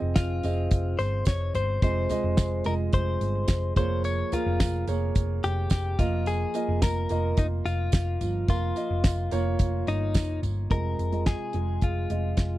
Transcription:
Already playing: F3 C4 G#4 D#5
0.02 F1
0.16 F4, kick, snare, closed hi-hat, tambourine
0.43 F1 C4 G#4 D#5, closed hi-hat, tambourine
0.71 F1, kick, closed hi-hat
0.99 G1 C5, closed hi-hat, tambourine
1.25 F1 C#5, kick, snare, closed hi-hat, tambourine
1.54 G1 C5, closed hi-hat, floor tom, tambourine
1.82 F1 C3 G#3 F4 C5 D#5, kick, closed hi-hat, tambourine
2.09 G#3 F4 D#5, closed hi-hat, floor tom, tambourine
2.24 F1
2.37 kick, snare, closed hi-hat, tambourine
2.64 F1 G#3 F4 A#4 D#5, closed hi-hat, tambourine
2.93 F1 C5, kick, closed hi-hat
3.21 G1, closed hi-hat
3.48 F1, kick, snare, closed hi-hat, tambourine
3.76 F1 F3 A#3 G#4 C5 C#5, kick, closed hi-hat, floor tom, tambourine
4.04 C#5, closed hi-hat, tambourine
4.32 A#3 F4 G#4 A#4, closed hi-hat, floor tom, tambourine
4.46 F1
4.60 F1, kick, snare, closed hi-hat, tambourine
4.87 F1 A#3 G#4 C#5, closed hi-hat, tambourine
5.15 F1, kick, closed hi-hat, tambourine
5.43 F1 G4, closed hi-hat, tambourine
5.70 F1 G4, kick, snare, closed hi-hat, tambourine
5.99 F1 F3 A#3 F4 D#5, kick, closed hi-hat, floor tom, tambourine
6.26 G#4, closed hi-hat, tambourine
6.54 A#3 F4 D#5, closed hi-hat, tambourine
6.69 F1
6.82 F1 A#4, kick, snare, closed hi-hat, tambourine
7.09 F1 A#3 F4 D#5, closed hi-hat, tambourine
7.37 F1 D#4, kick, closed hi-hat
7.65 F1 F4, closed hi-hat, tambourine
7.92 F1, kick, snare, closed hi-hat, tambourine
8.21 G1 F3, closed hi-hat, floor tom, tambourine
8.48 F1 A#3 F4 A#4, kick, closed hi-hat, tambourine
8.76 A#3 F4 D#5, closed hi-hat, tambourine
8.91 F1
9.04 kick, snare, closed hi-hat, tambourine
9.31 F1 A#3 F4 C#5, closed hi-hat, tambourine
9.59 F1, kick, closed hi-hat, tambourine
9.87 G1 D#4, closed hi-hat, tambourine
10.14 F1, kick, snare, closed hi-hat, tambourine
10.43 G1, closed hi-hat, floor tom, tambourine
10.70 F1 C3 G#3 F4 A#4 D#5, kick, closed hi-hat
10.99 F1, closed hi-hat
11.12 G#3 F4 D#5, closed hi-hat
11.26 G#4, kick, snare, closed hi-hat
11.53 F1 G#3 F4 G#4, closed hi-hat
11.81 F1 F4, kick, closed hi-hat
12.10 F1 G#3 F4 D#5, closed hi-hat
12.37 F1, kick, snare, closed hi-hat

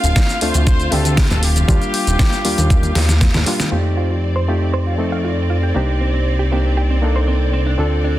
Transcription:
Already playing: A3 C4 D4 F4 F5
0.04 D1, closed hi-hat, shaker
0.16 kick, snare, closed hi-hat, shaker
0.29 closed hi-hat, shaker
0.41 D2 A3 C4 D4 F4 C5, open hi-hat
0.54 D2, closed hi-hat, muted conga, shaker
0.67 C5, kick, closed hi-hat, shaker
0.80 closed hi-hat, shaker
0.91 D2 A3 C4 D4 G4 A4, open hi-hat, high conga
1.05 closed hi-hat, shaker
1.17 F4, kick, snare, closed hi-hat, shaker
1.31 D1 A4, closed hi-hat, high conga, low conga, shaker
1.43 G4, open hi-hat
1.56 closed hi-hat, high conga, shaker
1.68 D#2 G3 A#3 D4 F4, kick, closed hi-hat, shaker
1.82 closed hi-hat, muted conga, shaker
1.94 open hi-hat
2.07 D#1, closed hi-hat, shaker
2.19 kick, snare, closed hi-hat, shaker
2.33 closed hi-hat, shaker
2.45 D#2 G3 A#3 D4 F4, open hi-hat
2.58 D#2, closed hi-hat, muted conga, shaker
2.70 kick, closed hi-hat, shaker
2.83 closed hi-hat, muted conga, shaker
2.95 D#2, snare, open hi-hat, high conga
3.09 snare, closed hi-hat, shaker
3.21 kick, snare, closed hi-hat, shaker
3.34 D#2, snare, closed hi-hat, low conga, shaker
3.46 G3 A#3 D4 F4, open hi-hat
3.60 snare, closed hi-hat, muted conga, high conga, shaker
3.71 F2 A3 C4 D#4 F4 G4 D5
3.97 F4
4.10 F4
4.36 C5
4.48 A3 C4 D#4 F4 G4
4.74 C5
4.87 F4
4.98 A3 C4 D#4 A4
5.12 F5
5.25 F4
5.50 F4
5.63 G4
5.74 C2 A#3 C4 D4 D#4 G4
6.01 C4
6.14 C4
6.39 G4
6.52 A#3 C4 D4 D#4 G4
6.77 G4
6.90 C4
7.02 A#3 D4 D#4 A4
7.16 C5
7.28 C4
7.53 C4
7.67 D4
7.78 D2 C4 D4 F4 A4
8.04 D4

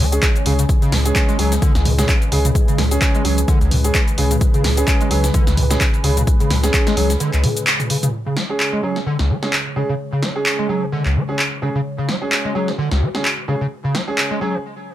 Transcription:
Already playing: C#3 G#3 G#4 C#5
0.00 C#2
0.12 G#3 C#4 G#4, closed hi-hat, cabasa
0.23 kick, clap, closed hi-hat, cabasa
0.36 closed hi-hat, cabasa
0.46 C#2 C#3 G#3 C#4 G#4, open hi-hat
0.59 C#3, closed hi-hat, cabasa
0.69 B4, kick, closed hi-hat, cabasa
0.82 C#3, closed hi-hat, cabasa
0.92 C#2 F#3, snare, mid tom, open hi-hat
1.05 G#3 C#4 G#4, closed hi-hat, cabasa
1.16 kick, clap, closed hi-hat, cabasa
1.29 G#3, closed hi-hat, cabasa
1.39 C#2 F#3 G#3 C#4 G#4, open hi-hat
1.52 E3, snare, closed hi-hat, cabasa
1.62 D3, kick, closed hi-hat, cabasa
1.75 C#2, snare, closed hi-hat, cabasa
1.85 C#2 F#3, mid tom, open hi-hat
1.98 G#3 C#4 G#4, snare, closed hi-hat, mid tom, cabasa
2.09 kick, clap, closed hi-hat, cabasa
2.22 closed hi-hat, cabasa
2.32 C#2 C#3 G#3 C#4 G#4, open hi-hat
2.45 C#3, closed hi-hat, mid tom, cabasa
2.55 kick, closed hi-hat, cabasa
2.68 C#3, closed hi-hat, cabasa
2.78 C#2 F#3, snare, mid tom, open hi-hat
2.91 G#3 C#4 G#4, closed hi-hat, cabasa
3.02 kick, clap, closed hi-hat, cabasa
3.15 G#3, closed hi-hat, cabasa
3.25 C#2 F#3 G#3 C#4 G#4, open hi-hat
3.38 E3, closed hi-hat, cabasa
3.48 D3, kick, closed hi-hat, cabasa
3.61 C#2, closed hi-hat, cabasa
3.71 C#2 F#3, mid tom, open hi-hat
3.84 G#3 C#4 G#4, closed hi-hat, cabasa
3.95 kick, clap, closed hi-hat, cabasa
4.08 closed hi-hat, cabasa
4.18 C#2 C#3 G#3 C#4 G#4, open hi-hat
4.31 C#3, closed hi-hat, mid tom, cabasa
4.41 kick, closed hi-hat, cabasa
4.54 C#3, closed hi-hat, cabasa
4.64 C#2 F#3, snare, mid tom, open hi-hat
4.77 G#3 C#4 G#4, closed hi-hat, cabasa
4.88 kick, clap, closed hi-hat, cabasa
5.01 G#3, closed hi-hat, cabasa
5.11 C#2 F#3 G#3 C#4 G#4, open hi-hat
5.24 E3, snare, closed hi-hat, cabasa
5.34 D3, kick, closed hi-hat, cabasa
5.47 C#2, snare, closed hi-hat, cabasa
5.57 C#2 F#3, mid tom, open hi-hat
5.70 G#3 C#4 G#4, snare, closed hi-hat, mid tom, cabasa
5.81 kick, clap, closed hi-hat, cabasa
5.94 closed hi-hat, cabasa
6.04 C#2 C#3 G#3 C#4 G#4, open hi-hat
6.17 C#3, closed hi-hat, mid tom, cabasa
6.27 kick, closed hi-hat, cabasa
6.40 C#3, closed hi-hat, cabasa
6.50 C#2 F#3, snare, mid tom, open hi-hat
6.63 G#3 C#4 G#4, snare, closed hi-hat, cabasa
6.74 kick, clap, closed hi-hat, cabasa
6.87 G#3, snare, closed hi-hat, cabasa
6.97 C#2 F#3 G#3 C#4 G#4, open hi-hat
7.10 E3, snare, closed hi-hat, cabasa
7.20 D3, closed hi-hat, cabasa
7.33 C#2, clap, closed hi-hat, cabasa
7.44 F#3, mid tom, open hi-hat
7.57 closed hi-hat, cabasa
7.67 clap, closed hi-hat, cabasa
7.80 closed hi-hat, mid tom, cabasa
7.90 C#3, open hi-hat
8.03 C#3, closed hi-hat, mid tom, cabasa
8.13 C#3 G#3 G#4 C#5
8.26 C#3
8.37 F#3, snare
8.50 G#3 C#4 G#4
8.60 clap
8.73 G#3
8.83 F#3 G#3 C#4 G#4
8.96 E3, snare
9.06 D3
9.19 C#2, snare
9.30 F#3
9.43 G#3 C#4 G#4, snare
9.53 clap
9.76 C#3 G#3 C#4 G#4
9.89 C#3
10.13 C#3
10.23 F#3, snare
10.36 G#3 C#4 G#4
10.46 clap
10.59 G#3
10.69 F#3 G#3 C#4 G#4
10.82 E3
10.92 D3
11.05 C#2, clap
11.16 F#3
11.29 G#3 C#4 G#4
11.39 clap
11.62 C#3 G#3 C#4 G#4
11.75 C#3
11.85 F#4
11.98 C#3
12.09 F#3, snare
12.22 G#3 C#4 G#4
12.32 clap
12.45 G#3
12.55 F#3 G#3 C#4 G#4
12.68 E3, snare
12.78 D3
12.91 C#2, snare
13.01 F#3
13.15 G#3 C#4 G#4, snare
13.25 clap
13.48 C#3 G#3 C#4 G#4
13.61 C#3
13.84 C#3
13.94 F#3, snare
14.08 G#3 C#4 G#4
14.18 clap
14.31 G#3
14.41 F#3 G#3 C#4 G#4
14.54 E3

